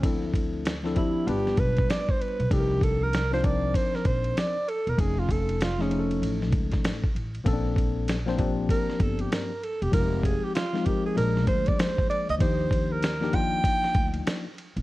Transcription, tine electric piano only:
X:1
M:4/4
L:1/16
Q:"Swing 16ths" 1/4=97
K:Bb
V:1 name="Tine electric piano"
[F,CD=EA]4 z [F,CDEA] [F,CDEG]2 [G,=B,DF=B]6- [G,B,DFB] z | [F,CDEAB]4 z [F,CDEF] [F,CDEB]6- [F,CDEB] z3 | [F,A,^CE^g]4 z [F,A,CE^G] [F,A,CEGA]6- [F,A,CEGA] z3 | [F,B,C^CDA]4 z [F,B,=CDc] [F,B,CDG]6- [F,B,CDG] z3 |
[F,_A,CEFG]4 z [F,A,CEF] [F,A,CEB]2 [F,A,B,D_A]6- [F,A,B,DA] z | [F,B,DEG]4 z [F,B,DEG] [F,B,DEF]6- [F,B,DEF] z3 |]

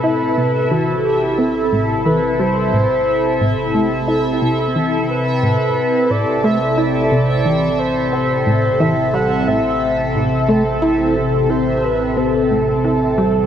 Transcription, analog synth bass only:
X:1
M:4/4
L:1/8
Q:1/4=89
K:Am
V:1 name="Analog synth bass" clef=bass
E C, E, z C A,, E, G, | A,, z A,, A, E C, E, z | A,, z A,, A, E C, E, z | C A,, E, G, A,, z A,, A, |
E C, E, z C A,, E, G, |]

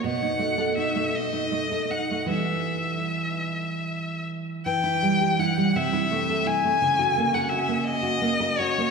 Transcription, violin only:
X:1
M:6/8
L:1/16
Q:3/8=54
K:Bphr
V:1 name="Violin"
f4 e2 ^d4 f2 | e8- e2 z2 | g4 f2 e4 ^g2- | ^g3 f e2 ^d4 ^c2 |]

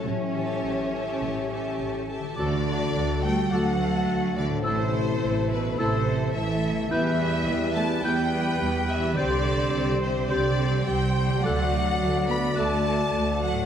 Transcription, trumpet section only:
X:1
M:4/4
L:1/8
Q:1/4=106
K:Amix
V:1 name="Trumpet section"
z8 | [K:Dmix] A4 A4 | A4 A2 A2 | B4 B4 |
c4 c2 c2 | d8 |]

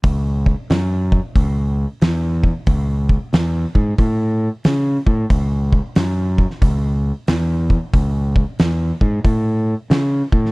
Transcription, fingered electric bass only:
X:1
M:4/4
L:1/8
Q:"Swing" 1/4=91
K:C#m
V:1 name="Fingered electric bass" clef=bass
C,,2 F,,2 C,,2 E,,2 | C,,2 E,, G,, A,,2 C, A,, | C,,2 F,,2 C,,2 E,,2 | C,,2 E,, G,, A,,2 C, A,, |]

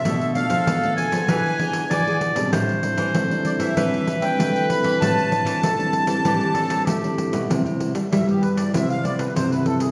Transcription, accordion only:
X:1
M:4/4
L:1/16
Q:1/4=97
K:Am
V:1 name="Accordion"
e2 f4 ^g8 z2 | z6 d e4 g3 b2 | a12 z4 | [K:C] z4 e G B d e f d B c B A _A |]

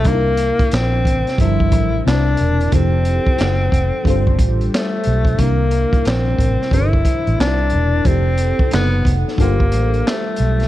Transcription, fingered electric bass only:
X:1
M:4/4
L:1/16
Q:"Swing 16ths" 1/4=90
K:Gdor
V:1 name="Fingered electric bass" clef=bass
C,,3 z B,,,2 A,,, z G,,,2 A,,,2 C,,2 E,,,2 | F,,,3 z ^F,,,2 =F,,, z G,,,2 A,,,2 z2 =B,,,2 | C,,3 z B,,,2 A,,, z G,,,2 z A,,, C,,2 E,,,2 | F,,,3 z ^F,,,2 =F,,, z G,,,2 A,,,2 z2 =B,,,2 |]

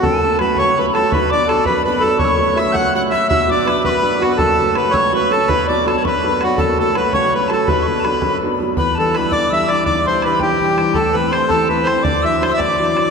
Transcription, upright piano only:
X:1
M:6/8
L:1/8
Q:3/8=110
K:Bm
V:1 name="Upright piano" clef=bass
[F,,,F,,] [F,A,C] [F,A,C] C,, [F,A,C] [F,A,C] | [B,,,B,,] [F,B,D] [F,B,D] F,, [F,B,D] [F,B,D] | [F,,,F,,] [F,A,C] [F,A,C] C,, [F,A,C] [F,A,C] | [B,,,B,,] [F,B,D] [F,B,D] F,, [F,B,D] [F,B,D] |
[F,,,F,,] [F,A,C] [F,A,C] C,, [F,A,C] [F,A,C] | [B,,,B,,] [F,B,D] [F,B,D] F,, [F,B,D] [F,B,D] | [F,,,F,,] [F,A,C] [F,A,C] C,, [F,A,C] [F,A,C] | [B,,,B,,] [F,B,D] [F,B,D] F,, [F,B,D] [F,B,D] |
[K:Em] E,, [E,G,D] [E,G,D] B,,, [E,G,D] [E,G,D] | B,,, [E,G,D] [E,G,D] B,,, [E,G,D] [E,G,D] | A,, [E,A,C] [E,A,C] E,, [E,A,C] [E,A,C] | D,, [E,F,D] [E,F,D] A,,, [E,F,D] [E,F,D] |]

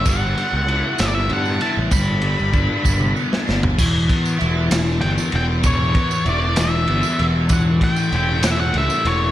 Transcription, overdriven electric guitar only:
X:1
M:6/8
L:1/8
Q:3/8=65
K:Edor
V:1 name="Overdriven electric guitar" clef=bass
G, G, E G, B, E | G, G, D G, B, D | E, B, E E, B, E, | E, B, E E, B, E, |
E, A, C E, A, E, |]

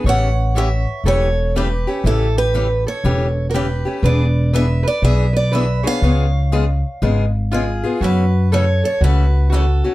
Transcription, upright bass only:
X:1
M:4/4
L:1/8
Q:"Swing" 1/4=121
K:A
V:1 name="Upright bass" clef=bass
A,,,4 E,,,4 | A,,,4 E,,,4 | E,,,4 B,,,4 | C,,4 G,,,4 |
F,,4 C,,4 |]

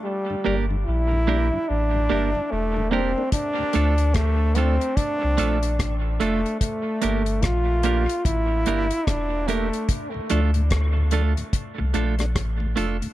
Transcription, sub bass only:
X:1
M:4/4
L:1/16
Q:"Swing 16ths" 1/4=73
K:Dm
V:1 name="Sub bass" clef=bass
z2 G,,,2 B,,,3 z A,,,2 G,,, z E,,,3 z | z2 D,,2 D,,3 z2 C,, B,,,2 A,,,2 F,,, z | z2 G,,,2 B,,,3 z A,,,2 G,,, z E,,,3 z | z2 D,,2 D,,3 z2 C,, B,,,2 A,,,2 F,,, z |]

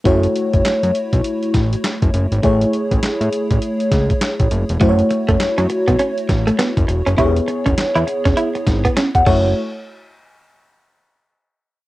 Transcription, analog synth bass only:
X:1
M:4/4
L:1/16
Q:"Swing 16ths" 1/4=101
K:F#m
V:1 name="Analog synth bass" clef=bass
F,,,2 z F,,, F,, F,, z B,,, z2 A,,,2 z F,,, F,,, G,,, | A,,,2 z A,,, z A,, z A,,, z2 C,,2 z A,,, F,,, E,,, | F,,,2 z F,,, F,, F,, z B,,, z2 A,,,2 z F,,, E,,, F,,, | E,,,2 z E,,, E,, E,, z E,,, z2 G,,,2 z E,,, F,,,2 |
z16 |]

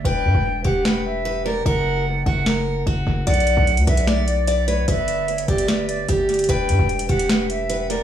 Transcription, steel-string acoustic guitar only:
X:1
M:4/4
L:1/8
Q:1/4=149
K:Edor
V:1 name="Steel-string acoustic guitar"
B2 z G B2 B ^A | ^A2 z F A2 F2 | d2 z B d2 d B | B2 z G B2 G2 |
B2 z G B2 B ^A |]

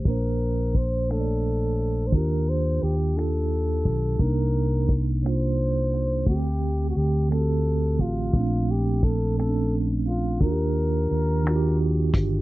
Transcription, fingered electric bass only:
X:1
M:6/8
L:1/8
Q:3/8=58
K:Bb
V:1 name="Fingered electric bass" clef=bass
B,,,6 | E,,2 E,,3 _C,, | C,,6 | D,,2 D,,3 A,,, |
B,,,6 | E,,2 E,,3 G,,, |]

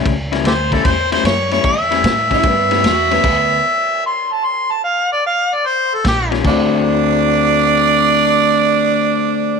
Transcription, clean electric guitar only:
X:1
M:4/4
L:1/8
Q:"Swing" 1/4=150
K:Dmix
V:1 name="Clean electric guitar"
[A,,G,^CE] [A,,G,CE] z [A,,G,CE] z [A,,G,CE] z [A,,G,CE] | z [A,,G,^CE] z [A,,G,CE] z [A,,G,CE] z [A,,G,CE] | z8 | z6 z [_E,G,_D=F] |
[D,A,CF]8- | [D,A,CF]8 |]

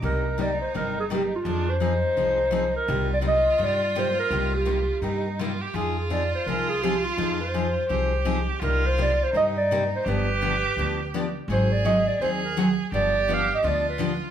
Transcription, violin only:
X:1
M:4/4
L:1/8
Q:"Swing" 1/4=168
K:Cm
V:1 name="Violin"
E8 | D2 E6 | F8- | F4 E2 F G |
F8- | F4 G4 | F4 E4 | G6- G z |
A4 A4 | G4 F4 |]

